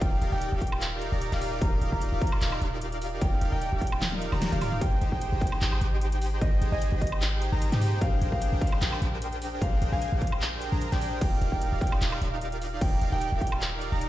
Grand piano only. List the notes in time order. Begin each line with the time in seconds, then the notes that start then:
0.01 G5
0.32 G5
0.62 G5
1.62 A#5
1.92 A#5
2.21 A#5
3.21 G5
3.52 G5
3.81 G5
4.81 G5
5.12 G5
5.41 G5
6.41 D#5
6.72 D#5
7.01 D#5
8.01 F5
8.32 F5
8.61 F5
9.62 F5
9.92 F5
10.22 F5
11.21 G5
11.52 G5
11.81 G5
12.81 G5
13.12 G5
13.41 G5